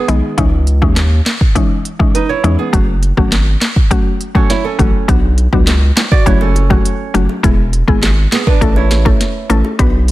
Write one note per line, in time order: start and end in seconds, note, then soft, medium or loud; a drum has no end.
0.00 0.36 B3 medium
0.00 0.36 G#4 medium
0.08 0.22 B1 medium
0.08 0.35 D#3 medium
0.08 0.36 G#3 medium
0.08 0.36 B3 medium
0.08 0.36 D#4 medium
0.08 closed hi-hat soft
0.38 0.83 C#2 loud
0.38 0.53 E3 loud
0.38 0.53 G#3 medium
0.38 0.53 C#4 medium
0.38 0.53 D#4 loud
0.38 kick loud
0.38 closed hi-hat medium
0.67 closed hi-hat soft
0.82 1.21 D#2 medium
0.82 0.97 E3 medium
0.82 0.97 G#3 medium
0.82 0.97 C#4 medium
0.82 0.97 D#4 medium
0.82 kick medium
0.96 snare loud
0.96 clap medium
0.96 closed hi-hat medium
1.26 snare loud
1.26 clap loud
1.26 closed hi-hat medium
1.41 kick loud
1.55 1.70 E3 medium
1.55 1.70 G#3 medium
1.55 1.71 C#4 medium
1.55 1.71 D#4 loud
1.55 kick medium
1.55 closed hi-hat medium
1.85 closed hi-hat medium
1.99 2.14 E3 medium
1.99 2.15 G#3 medium
1.99 2.15 C#4 medium
1.99 2.15 D#4 medium
1.99 kick medium
2.15 2.29 D#4 medium
2.15 2.28 B4 medium
2.15 closed hi-hat medium
2.29 2.58 E4 medium
2.29 2.57 C#5 medium
2.44 2.57 E2 medium
2.44 2.59 E3 medium
2.44 2.59 G#3 medium
2.44 2.59 C#4 medium
2.44 2.59 D#4 medium
2.44 closed hi-hat soft
2.59 2.87 B3 medium
2.59 2.87 G#4 medium
2.73 3.12 F#1 loud
2.73 2.88 F#3 medium
2.73 2.88 A3 medium
2.73 2.88 C#4 medium
2.73 2.88 F#4 loud
2.73 kick loud
2.73 closed hi-hat medium
3.03 closed hi-hat medium
3.17 3.56 G#1 medium
3.17 3.32 F#3 medium
3.17 3.32 A3 medium
3.17 3.32 C#4 medium
3.17 3.32 F#4 medium
3.17 kick medium
3.32 snare loud
3.32 clap medium
3.32 closed hi-hat medium
3.61 snare loud
3.61 clap loud
3.61 closed hi-hat soft
3.76 kick loud
3.91 4.06 F#3 loud
3.91 4.06 A3 medium
3.91 4.06 C#4 medium
3.91 4.06 F#4 loud
3.91 kick loud
3.91 closed hi-hat medium
4.21 closed hi-hat medium
4.35 4.75 F#3 medium
4.35 4.76 A3 medium
4.35 4.76 C#4 medium
4.35 4.49 C#4 medium
4.35 4.76 F#4 medium
4.35 4.49 A4 medium
4.35 kick medium
4.50 4.64 E4 medium
4.50 4.64 C#5 medium
4.50 snare medium
4.50 closed hi-hat medium
4.64 5.07 C#4 medium
4.64 5.06 A4 medium
4.79 4.92 A1 medium
4.79 5.06 F#3 medium
4.79 5.06 A3 medium
4.79 5.06 C#4 medium
4.79 5.06 F#4 medium
4.79 kick medium
4.79 closed hi-hat soft
5.08 5.48 B1 loud
5.08 5.23 F#3 medium
5.08 5.23 B3 medium
5.08 5.23 D4 medium
5.08 5.24 F#4 loud
5.08 kick loud
5.08 closed hi-hat medium
5.08 high bongo medium
5.38 closed hi-hat medium
5.53 5.92 C#2 medium
5.53 5.67 F#3 medium
5.53 5.68 B3 medium
5.53 5.68 D4 medium
5.53 5.68 F#4 medium
5.53 kick medium
5.67 snare loud
5.67 clap medium
5.67 closed hi-hat medium
5.67 high bongo medium
5.97 snare loud
5.97 clap medium
5.97 closed hi-hat medium
5.97 low bongo medium
6.12 6.26 F#4 medium
6.12 6.26 D5 medium
6.12 kick loud
6.26 6.78 F#1 loud
6.26 6.41 F#3 loud
6.26 6.41 A3 medium
6.26 6.41 C#4 medium
6.26 6.41 E4 medium
6.26 6.41 F#4 loud
6.26 6.40 C#5 medium
6.26 kick loud
6.26 closed hi-hat medium
6.26 high bongo medium
6.41 7.26 C#4 medium
6.41 7.25 A4 medium
6.41 high bongo medium
6.56 closed hi-hat medium
6.56 high bongo soft
6.70 6.85 F#3 medium
6.70 6.85 A3 medium
6.70 6.85 C#4 medium
6.70 6.85 F#4 medium
6.70 kick medium
6.70 high bongo medium
6.85 closed hi-hat medium
7.14 7.28 F#1 medium
7.14 7.29 F#3 medium
7.14 7.29 A3 medium
7.14 7.29 C#4 medium
7.14 7.29 F#4 medium
7.14 closed hi-hat soft
7.14 low bongo medium
7.29 high bongo medium
7.43 7.83 E1 loud
7.43 7.58 G#3 medium
7.43 7.58 B3 medium
7.43 7.59 E4 medium
7.43 7.59 G#4 loud
7.43 kick loud
7.43 closed hi-hat medium
7.43 high bongo medium
7.73 closed hi-hat medium
7.88 8.27 G#1 medium
7.88 8.03 G#3 medium
7.88 8.03 B3 medium
7.88 8.03 E4 medium
7.88 8.03 G#4 medium
7.88 kick medium
8.03 snare loud
8.03 clap loud
8.03 closed hi-hat medium
8.03 high bongo medium
8.32 8.46 B3 medium
8.32 8.46 G#4 medium
8.32 snare loud
8.32 clap loud
8.32 closed hi-hat medium
8.32 low bongo medium
8.47 8.75 D4 medium
8.47 8.75 B4 medium
8.47 kick loud
8.61 9.13 A1 loud
8.61 8.76 A3 loud
8.61 8.76 C#4 medium
8.61 8.76 E4 medium
8.61 8.77 A4 loud
8.61 kick loud
8.61 closed hi-hat medium
8.61 high bongo medium
8.76 9.61 E4 medium
8.76 9.61 C#5 medium
8.76 high bongo medium
8.91 snare medium
8.91 closed hi-hat medium
8.91 high bongo soft
9.05 9.46 A3 medium
9.05 9.46 C#4 medium
9.05 9.46 E4 medium
9.05 9.46 A4 medium
9.05 kick medium
9.05 high bongo medium
9.21 snare medium
9.21 closed hi-hat medium
9.50 9.63 A1 medium
9.50 9.77 A3 medium
9.50 9.77 C#4 medium
9.50 9.77 E4 medium
9.50 9.77 A4 medium
9.50 closed hi-hat medium
9.50 low bongo medium
9.65 high bongo medium
9.79 10.12 B1 loud
9.79 9.94 B3 loud
9.79 9.94 D4 medium
9.79 9.94 F#4 medium
9.79 9.94 B4 loud
9.79 kick loud
9.79 closed hi-hat medium
9.79 high bongo medium
10.08 closed hi-hat medium